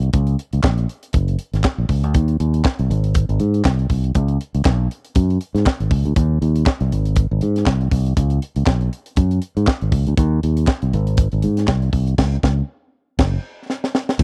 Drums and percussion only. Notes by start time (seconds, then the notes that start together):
0.03 closed hi-hat
0.13 kick, closed hi-hat
0.27 closed hi-hat
0.39 closed hi-hat
0.53 closed hi-hat
0.64 kick, snare, clap
0.78 closed hi-hat
0.89 closed hi-hat
1.03 closed hi-hat
1.13 kick, closed hi-hat
1.28 closed hi-hat
1.39 closed hi-hat
1.54 snare, closed hi-hat
1.64 kick, snare, clap
1.89 kick, open hi-hat
2.04 closed hi-hat
2.14 kick, closed hi-hat
2.28 closed hi-hat
2.40 closed hi-hat
2.54 closed hi-hat
2.65 kick, snare, clap
2.79 closed hi-hat
2.91 closed hi-hat
3.04 closed hi-hat
3.14 kick, closed hi-hat
3.29 closed hi-hat
3.40 closed hi-hat
3.54 closed hi-hat
3.65 kick, snare, clap
3.79 closed hi-hat
3.90 kick, open hi-hat
4.04 closed hi-hat
4.15 kick, closed hi-hat
4.28 closed hi-hat
4.41 closed hi-hat
4.55 closed hi-hat
4.65 kick, snare, clap
4.91 closed hi-hat
5.05 closed hi-hat
5.15 kick, closed hi-hat
5.30 closed hi-hat
5.41 closed hi-hat
5.56 snare, closed hi-hat
5.66 kick, snare, clap
5.80 closed hi-hat
5.91 kick, open hi-hat
6.06 closed hi-hat
6.16 kick, closed hi-hat
6.42 closed hi-hat
6.56 closed hi-hat
6.66 kick, snare, clap
6.80 closed hi-hat
6.92 closed hi-hat
7.05 closed hi-hat
7.16 kick, closed hi-hat
7.41 closed hi-hat
7.56 snare, closed hi-hat
7.66 kick, snare, clap
7.81 closed hi-hat
7.91 kick, open hi-hat
8.06 closed hi-hat
8.17 kick, closed hi-hat
8.30 closed hi-hat
8.42 closed hi-hat
8.56 closed hi-hat
8.66 kick, snare, clap
8.81 closed hi-hat
8.93 closed hi-hat
9.06 closed hi-hat
9.16 kick, closed hi-hat
9.31 closed hi-hat
9.42 closed hi-hat
9.57 closed hi-hat
9.67 kick, snare, clap
9.81 closed hi-hat
9.92 kick, open hi-hat
10.07 closed hi-hat
10.17 kick, closed hi-hat
10.43 closed hi-hat
10.57 closed hi-hat
10.67 kick, snare, clap
10.82 closed hi-hat
10.93 closed hi-hat
11.07 closed hi-hat
11.17 kick, closed hi-hat
11.32 closed hi-hat
11.42 closed hi-hat
11.57 snare, closed hi-hat
11.67 kick, snare, clap
11.82 closed hi-hat
11.93 kick, open hi-hat
12.07 closed hi-hat
12.18 kick, snare, crash
12.43 kick, snare
13.19 kick, snare, crash
13.70 snare
13.84 snare
13.95 snare
14.09 snare
14.19 kick, crash